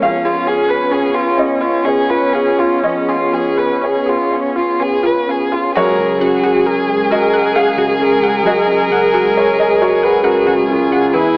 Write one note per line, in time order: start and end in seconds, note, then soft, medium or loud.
0.02 2.79 F2 medium
0.02 5.75 B3 medium
0.02 0.16 C#4 medium
0.02 5.55 C#4 medium
0.02 0.26 C#4 medium
0.02 5.71 G#4 medium
0.02 5.71 C#5 medium
0.02 1.34 F5 medium
0.25 0.49 F4 soft
0.25 0.38 G#4 medium
0.47 1.20 C#4 soft
0.47 0.60 G#4 medium
0.47 0.71 G#4 medium
0.68 0.83 B4 medium
0.68 0.94 B4 soft
0.92 1.06 C#4 medium
0.92 1.16 G#4 soft
0.92 1.67 B4 soft
1.15 1.40 F4 soft
1.15 1.29 G#4 medium
1.38 1.62 C#4 soft
1.38 1.85 C#5 soft
1.38 1.83 D#5 medium
1.61 1.86 F4 soft
1.61 1.76 F4 medium
1.85 1.99 C#4 medium
1.85 2.11 G#4 soft
1.85 2.64 B4 soft
1.85 2.80 C#5 medium
2.10 2.24 F4 medium
2.10 2.34 B4 soft
2.33 3.14 C#4 soft
2.33 2.49 F4 medium
2.33 2.60 G#4 soft
2.59 2.82 F4 soft
2.59 2.74 F4 medium
2.83 5.71 F2 soft
2.83 3.10 C#4 soft
2.83 2.98 C#4 medium
2.83 3.79 D#5 medium
3.08 3.36 F4 soft
3.08 3.23 G#4 medium
3.33 4.12 F3 soft
3.33 3.48 G#4 medium
3.33 3.60 G#4 soft
3.57 3.72 B4 medium
3.57 3.86 B4 soft
3.81 3.96 C#4 medium
3.81 4.11 G#4 soft
3.81 4.61 B4 soft
3.81 4.30 C#5 soft
4.06 4.35 F4 soft
4.06 4.21 G#4 medium
4.31 4.59 C#4 soft
4.31 5.09 C#5 soft
4.56 4.70 F4 medium
4.56 4.84 F4 soft
4.80 4.94 C#4 medium
4.80 5.07 G#4 soft
4.80 5.57 B4 soft
5.03 5.18 F4 medium
5.03 5.32 B4 soft
5.28 5.75 C#4 soft
5.28 5.43 F4 medium
5.28 5.55 G#4 soft
5.52 5.66 F4 medium
5.52 5.76 F4 soft
5.75 8.42 F#2 medium
5.75 11.10 G#3 medium
5.75 5.89 F#4 loud
5.75 11.09 G#4 medium
5.75 11.10 G#4 medium
5.75 6.19 A#4 medium
5.75 11.10 A#4 medium
5.75 7.08 C#5 loud
5.98 6.35 C#3 medium
6.21 6.58 C#4 medium
6.21 6.68 F#4 medium
6.21 6.35 F#5 medium
6.43 6.57 F#4 loud
6.43 6.80 G#4 medium
6.66 7.13 G#4 medium
6.66 6.80 A#4 medium
6.66 7.03 A#4 medium
6.89 7.25 G#4 medium
7.10 7.25 F#4 loud
7.10 7.47 A#4 medium
7.10 7.57 A#4 medium
7.10 7.53 D#5 medium
7.33 7.69 G#4 medium
7.33 7.47 F#5 medium
7.56 7.92 C#4 medium
7.56 8.03 G#4 medium
7.56 8.42 F5 medium
7.56 7.69 F#5 medium
7.77 8.14 C#3 medium
7.77 7.92 F#4 medium
7.99 8.36 C#4 medium
7.99 10.24 A#4 medium
8.21 8.58 C#3 soft
8.21 8.37 F#5 medium
8.44 11.08 F#2 medium
8.44 8.60 F#4 medium
8.44 9.32 D#5 medium
8.67 9.04 C#4 soft
8.90 9.26 C#3 medium
8.90 9.05 F#5 medium
9.12 9.27 F#4 medium
9.12 9.48 G#4 medium
9.35 9.71 A#4 medium
9.35 9.50 A#4 medium
9.35 9.57 C#5 medium
9.57 9.93 G#4 medium
9.57 9.79 D#5 medium
9.79 9.95 F#4 medium
9.79 10.15 A#4 medium
9.79 10.02 C#5 medium
10.01 10.37 G#4 soft
10.01 10.24 B4 medium
10.01 10.16 F#5 medium
10.24 10.59 C#4 medium
10.24 10.68 F#4 medium
10.24 11.09 A#4 medium
10.24 10.38 F#5 medium
10.47 10.82 C#3 soft
10.47 10.60 F#4 loud
10.68 11.04 C#4 medium
10.68 11.14 F4 medium
10.92 11.13 C#3 soft
10.92 11.05 F#5 medium
11.13 11.37 E2 medium
11.13 11.37 G#3 medium
11.13 11.37 B3 medium
11.13 11.37 E4 medium
11.13 11.26 E4 medium
11.13 11.37 G#4 medium
11.13 11.37 B4 medium